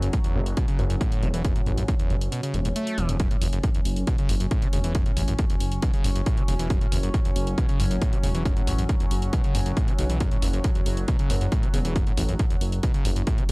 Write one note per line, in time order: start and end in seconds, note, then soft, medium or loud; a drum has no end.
0.00 0.08 F#2 medium
0.00 3.19 F#3 medium
0.00 3.19 C#4 medium
0.00 closed hi-hat soft
0.13 0.19 A2 loud
0.13 kick loud
0.13 closed hi-hat medium
0.24 0.37 E2 medium
0.24 closed hi-hat medium
0.35 0.53 F#1 medium
0.35 0.41 C#3 loud
0.46 closed hi-hat medium
0.57 0.66 B2 medium
0.57 kick loud
0.57 closed hi-hat medium
0.68 0.80 C#3 medium
0.68 closed hi-hat soft
0.79 0.97 F#1 loud
0.79 0.85 E2 loud
0.79 closed hi-hat soft
0.90 0.96 F#2 medium
0.90 closed hi-hat medium
1.01 1.24 A2 loud
1.01 kick loud
1.01 closed hi-hat medium
1.12 closed hi-hat medium
1.23 1.32 E1 medium
1.23 1.29 C#3 loud
1.23 closed hi-hat soft
1.34 1.52 E1 medium
1.34 1.43 E3 loud
1.34 closed hi-hat medium
1.44 1.54 F#2 medium
1.44 kick loud
1.44 closed hi-hat medium
1.56 1.62 A2 medium
1.56 closed hi-hat soft
1.66 1.84 A1 loud
1.66 1.73 E2 loud
1.66 closed hi-hat soft
1.77 1.83 F#2 medium
1.77 closed hi-hat soft
1.88 1.94 A2 loud
1.88 kick loud
1.88 closed hi-hat medium
1.99 2.12 E2 medium
1.99 closed hi-hat medium
2.10 2.28 F#1 medium
2.10 2.16 C#3 loud
2.10 closed hi-hat soft
2.21 closed hi-hat medium
2.32 2.41 B2 medium
2.32 closed hi-hat medium
2.43 2.55 C#3 medium
2.43 closed hi-hat medium
2.54 2.72 E1 loud
2.54 2.60 E2 medium
2.54 closed hi-hat soft
2.65 2.69 A2 medium
2.65 closed hi-hat soft
2.76 2.99 A3 loud
2.76 closed hi-hat medium
2.87 closed hi-hat medium
2.98 3.07 E1 loud
2.98 3.10 E3 medium
2.98 closed hi-hat medium
3.09 3.27 E1 medium
3.09 3.18 E2 medium
3.09 closed hi-hat medium
3.20 3.29 F#2 medium
3.20 13.52 F#3 medium
3.20 13.52 C#4 medium
3.20 kick loud
3.20 closed hi-hat medium
3.31 3.37 A2 medium
3.31 closed hi-hat medium
3.42 3.60 F#1 loud
3.42 3.48 E2 loud
3.42 open hi-hat loud
3.53 3.59 F#2 medium
3.53 closed hi-hat medium
3.63 3.70 A2 loud
3.63 kick loud
3.63 closed hi-hat medium
3.75 3.81 E2 medium
3.75 closed hi-hat medium
3.85 4.03 F#1 loud
3.85 open hi-hat loud
3.96 closed hi-hat medium
4.07 4.17 B2 medium
4.07 kick loud
4.07 closed hi-hat medium
4.18 4.31 C#3 medium
4.18 closed hi-hat medium
4.29 4.47 F#1 loud
4.29 4.35 E2 loud
4.29 open hi-hat loud
4.40 4.46 F#2 medium
4.40 closed hi-hat medium
4.51 4.64 A2 loud
4.51 kick loud
4.51 closed hi-hat medium
4.62 4.68 C#3 loud
4.62 closed hi-hat medium
4.73 4.82 E1 loud
4.73 4.79 C#3 loud
4.73 open hi-hat loud
4.84 5.02 E1 medium
4.84 4.93 E3 loud
4.84 closed hi-hat medium
4.95 5.04 F#2 medium
4.95 kick loud
4.95 closed hi-hat medium
5.06 5.12 A2 medium
5.06 closed hi-hat medium
5.17 5.35 A1 loud
5.17 5.23 E2 loud
5.17 open hi-hat loud
5.28 5.34 F#2 medium
5.28 closed hi-hat medium
5.39 5.45 A2 loud
5.39 kick loud
5.39 closed hi-hat medium
5.50 5.56 E2 medium
5.50 closed hi-hat medium
5.60 5.79 F#1 medium
5.60 open hi-hat loud
5.72 closed hi-hat medium
5.82 5.92 B2 medium
5.82 kick loud
5.82 closed hi-hat medium
5.94 6.06 C#3 medium
5.94 closed hi-hat medium
6.04 6.22 F#1 medium
6.04 6.11 E2 loud
6.04 open hi-hat loud
6.16 6.22 F#2 medium
6.16 closed hi-hat medium
6.26 6.39 A2 loud
6.26 kick loud
6.26 closed hi-hat medium
6.37 6.43 C#3 loud
6.37 closed hi-hat medium
6.48 6.57 E1 medium
6.48 6.54 C#3 loud
6.48 open hi-hat loud
6.59 6.77 E1 loud
6.59 6.68 E3 loud
6.59 closed hi-hat medium
6.70 6.79 F#2 medium
6.70 kick loud
6.70 closed hi-hat medium
6.81 6.87 A2 medium
6.81 closed hi-hat medium
6.92 7.10 F#1 loud
6.92 6.98 E2 loud
6.92 open hi-hat loud
7.03 7.09 F#2 medium
7.03 closed hi-hat medium
7.14 7.20 A2 loud
7.14 kick loud
7.14 closed hi-hat medium
7.25 7.31 E2 medium
7.25 closed hi-hat medium
7.36 7.54 F#1 loud
7.36 open hi-hat loud
7.47 closed hi-hat medium
7.58 7.67 B2 medium
7.58 kick loud
7.58 closed hi-hat medium
7.69 7.81 C#3 medium
7.69 closed hi-hat medium
7.80 7.98 F#1 loud
7.80 7.86 E2 loud
7.80 open hi-hat loud
7.91 7.97 F#2 medium
7.91 closed hi-hat medium
8.01 8.14 A2 loud
8.01 kick loud
8.01 closed hi-hat medium
8.13 8.19 C#3 loud
8.13 closed hi-hat medium
8.23 8.33 E1 medium
8.23 8.30 C#3 loud
8.23 open hi-hat loud
8.35 8.53 E1 medium
8.35 8.43 E3 loud
8.35 closed hi-hat medium
8.45 8.54 F#2 medium
8.45 kick loud
8.45 closed hi-hat medium
8.56 8.62 A2 medium
8.56 closed hi-hat medium
8.67 8.85 A1 loud
8.67 8.73 E2 loud
8.67 open hi-hat loud
8.78 8.84 F#2 medium
8.78 closed hi-hat medium
8.89 8.95 A2 loud
8.89 kick loud
8.89 closed hi-hat medium
9.00 9.06 E2 medium
9.00 closed hi-hat medium
9.11 9.29 F#1 medium
9.11 open hi-hat loud
9.22 closed hi-hat medium
9.33 9.42 B2 medium
9.33 kick loud
9.33 closed hi-hat medium
9.44 9.56 C#3 medium
9.44 closed hi-hat soft
9.55 9.73 F#1 medium
9.55 9.61 E2 loud
9.55 open hi-hat loud
9.66 9.72 F#2 medium
9.66 closed hi-hat soft
9.77 9.89 A2 loud
9.77 kick loud
9.77 closed hi-hat medium
9.88 9.94 C#3 loud
9.88 closed hi-hat medium
9.99 10.08 B1 loud
9.99 10.05 C#3 loud
9.99 open hi-hat loud
10.10 10.28 B1 loud
10.10 10.19 E3 loud
10.10 closed hi-hat medium
10.20 10.30 F#2 medium
10.20 kick loud
10.20 closed hi-hat medium
10.31 10.38 A2 medium
10.31 closed hi-hat soft
10.42 10.60 F#1 loud
10.42 10.49 E2 loud
10.42 open hi-hat loud
10.53 10.59 F#2 medium
10.53 closed hi-hat soft
10.64 10.70 A2 loud
10.64 kick loud
10.64 closed hi-hat medium
10.75 10.81 E2 medium
10.75 closed hi-hat soft
10.86 11.04 F#1 loud
10.86 open hi-hat loud
10.97 closed hi-hat medium
11.08 11.17 B2 medium
11.08 kick loud
11.08 closed hi-hat medium
11.19 11.31 C#3 medium
11.19 closed hi-hat soft
11.30 11.48 F#1 loud
11.30 11.36 E2 loud
11.30 open hi-hat loud
11.41 11.47 F#2 medium
11.41 closed hi-hat soft
11.52 11.64 A2 loud
11.52 kick loud
11.52 closed hi-hat medium
11.63 11.69 C#3 loud
11.63 closed hi-hat medium
11.74 11.83 E1 medium
11.74 11.80 C#3 loud
11.74 open hi-hat loud
11.85 12.03 E1 medium
11.85 11.94 E3 loud
11.85 closed hi-hat medium
11.95 12.05 F#2 medium
11.95 kick loud
11.95 closed hi-hat medium
12.07 12.13 A2 medium
12.07 closed hi-hat soft
12.17 12.36 A1 loud
12.17 12.24 E2 loud
12.17 open hi-hat loud
12.29 12.35 F#2 medium
12.29 closed hi-hat soft
12.39 12.46 A2 loud
12.39 kick loud
12.39 closed hi-hat medium
12.50 12.56 E2 medium
12.50 closed hi-hat medium
12.61 12.79 F#1 medium
12.61 open hi-hat loud
12.72 closed hi-hat medium
12.83 12.92 B2 medium
12.83 kick loud
12.83 closed hi-hat medium
12.94 13.06 C#3 medium
12.94 closed hi-hat soft
13.05 13.23 F#1 loud
13.05 13.11 E2 loud
13.05 open hi-hat loud
13.16 13.22 F#2 medium
13.16 closed hi-hat medium
13.27 13.40 A2 loud
13.27 kick loud
13.27 closed hi-hat medium
13.38 13.44 C#3 loud
13.38 closed hi-hat soft